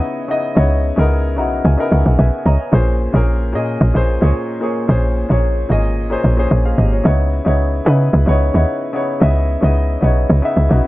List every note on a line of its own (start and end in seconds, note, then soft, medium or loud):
0.00 0.28 C#3 medium
0.00 0.29 B3 medium
0.00 0.30 D#4 medium
0.00 0.30 E4 medium
0.00 0.58 C#5 loud
0.00 0.31 D#5 medium
0.00 1.92 E5 medium
0.28 0.51 C#3 medium
0.28 0.51 B3 medium
0.28 0.51 D#4 medium
0.28 0.52 E4 medium
0.28 0.52 D#5 loud
0.55 0.92 C#2 loud
0.55 0.89 C#3 medium
0.55 0.89 B3 medium
0.55 0.89 D#4 medium
0.55 0.90 E4 medium
0.55 0.90 C#5 loud
0.96 1.39 C#2 medium
0.96 1.29 C#3 medium
0.96 1.30 B3 medium
0.96 1.30 D#4 medium
0.96 1.30 E4 medium
0.96 1.31 A#4 loud
1.36 1.61 B1 medium
1.36 1.70 C#3 medium
1.36 1.70 B3 medium
1.36 1.70 D#4 medium
1.36 1.71 E4 medium
1.36 1.71 F#4 medium
1.36 1.63 A#5 medium
1.65 1.77 C#2 loud
1.65 1.90 G#5 medium
1.77 1.99 C#3 medium
1.77 2.00 B3 medium
1.77 2.00 D#4 medium
1.77 2.01 E4 medium
1.77 1.92 A#4 medium
1.92 2.04 C#2 medium
1.92 2.05 G#4 medium
1.92 2.05 E5 medium
1.92 2.04 F#5 medium
2.06 2.17 B1 medium
2.06 2.18 A#4 medium
2.06 2.18 F#5 medium
2.19 2.31 B1 loud
2.19 2.45 B4 medium
2.19 2.44 E5 medium
2.19 2.44 G#5 medium
2.46 2.58 C#2 medium
2.46 2.59 C#5 medium
2.46 2.71 D#5 medium
2.46 2.59 A#5 medium
2.60 2.86 B4 medium
2.60 2.86 G#5 medium
2.71 3.09 A#1 loud
2.71 3.05 A#2 medium
2.71 3.05 A#3 medium
2.71 3.05 C#4 medium
2.71 3.06 G#4 medium
2.71 3.06 C5 loud
3.13 3.55 A#1 loud
3.13 3.45 A#2 medium
3.13 3.46 A#3 medium
3.13 3.46 C#4 medium
3.13 3.46 G#4 medium
3.13 3.47 A#4 medium
3.52 3.86 A#2 medium
3.52 3.77 A#2 medium
3.52 3.86 A#3 medium
3.52 3.87 C#4 medium
3.52 3.87 G#4 medium
3.52 3.87 D#5 medium
3.81 3.93 A#1 loud
3.94 4.18 A#1 medium
3.94 4.16 A#2 medium
3.94 4.16 A#3 medium
3.94 4.16 C#4 medium
3.94 4.17 G#4 medium
3.94 4.17 C5 loud
4.21 4.33 C#2 medium
4.21 4.53 A#2 medium
4.21 4.54 A#3 medium
4.21 4.54 C#4 medium
4.21 4.55 G#4 medium
4.21 4.55 C#5 medium
4.61 4.83 A#2 medium
4.61 4.83 A#3 medium
4.61 4.84 C#4 medium
4.61 4.84 G#4 medium
4.61 4.85 C#5 medium
4.88 5.25 A#1 loud
4.88 5.21 A#2 medium
4.88 5.21 A#3 medium
4.88 5.22 C#4 medium
4.88 5.22 G#4 medium
4.88 5.22 C5 medium
5.29 5.65 A#1 loud
5.29 5.62 A#2 medium
5.29 5.62 A#3 medium
5.29 5.62 C#4 medium
5.29 5.63 G#4 medium
5.29 5.63 C#5 medium
5.69 6.17 G#1 medium
5.69 6.02 A#2 medium
5.69 6.02 A#3 medium
5.69 6.03 C#4 medium
5.69 6.03 G#4 medium
5.69 6.03 D#5 medium
6.10 6.32 A#2 medium
6.10 6.32 A#3 medium
6.10 6.33 C#4 medium
6.10 6.33 G#4 medium
6.10 6.33 C5 loud
6.24 6.48 A#1 medium
6.37 6.70 A#2 medium
6.37 6.70 A#3 medium
6.37 6.70 C#4 medium
6.37 6.52 G#4 medium
6.37 6.50 C5 loud
6.51 6.75 A#1 medium
6.51 6.65 C5 medium
6.51 6.65 G#5 medium
6.65 6.78 G#4 medium
6.65 6.78 F5 medium
6.78 7.02 G#1 medium
6.78 6.92 G4 medium
6.78 6.92 D#5 medium
6.92 7.18 F4 medium
6.92 7.05 C#5 medium
7.04 7.41 C#2 loud
7.04 7.37 C#3 medium
7.04 7.38 B3 medium
7.04 7.38 D#4 medium
7.04 7.38 E4 medium
7.04 7.39 C#5 loud
7.45 7.81 C#2 medium
7.45 7.78 C#3 medium
7.45 7.78 B3 medium
7.45 7.79 D#4 medium
7.45 7.79 E4 medium
7.45 7.79 C#5 medium
7.85 8.18 C#3 medium
7.85 8.10 C#3 loud
7.85 8.19 B3 medium
7.85 8.19 D#4 medium
7.85 8.19 E4 medium
7.85 8.20 B4 medium
8.13 8.26 C#2 loud
8.26 8.51 C#2 medium
8.26 8.48 C#3 medium
8.26 8.48 B3 medium
8.26 8.49 D#4 medium
8.26 8.49 E4 medium
8.26 8.50 C#5 loud
8.53 8.66 D#2 medium
8.53 8.86 C#3 medium
8.53 8.86 B3 medium
8.53 8.87 D#4 medium
8.53 8.87 E4 medium
8.53 8.87 C#5 medium
8.93 9.16 C#3 medium
8.93 9.16 B3 medium
8.93 9.16 D#4 medium
8.93 9.17 E4 medium
8.93 9.17 C#5 medium
9.20 9.57 C#2 loud
9.20 9.53 C#3 medium
9.20 9.54 B3 medium
9.20 9.54 E4 medium
9.20 9.54 D#5 medium
9.20 9.55 E5 medium
9.61 9.97 C#2 loud
9.61 9.94 C#3 medium
9.61 9.94 B3 medium
9.61 9.95 D#4 medium
9.61 9.95 E4 medium
9.61 9.95 D#5 medium
10.01 10.26 B1 medium
10.01 10.34 C#3 medium
10.01 10.35 B3 medium
10.01 10.35 D#4 medium
10.01 10.36 E4 medium
10.01 10.36 C#5 medium
10.30 10.42 C#2 loud
10.42 10.64 C#3 medium
10.42 10.65 B3 medium
10.42 10.65 D#4 medium
10.42 10.65 E4 medium
10.42 10.66 E5 loud
10.57 10.69 C#2 medium
10.69 10.82 B1 loud
10.69 10.87 C#3 medium
10.69 10.87 B3 medium
10.69 10.87 D#4 medium
10.69 10.87 E4 medium
10.69 10.87 F#4 medium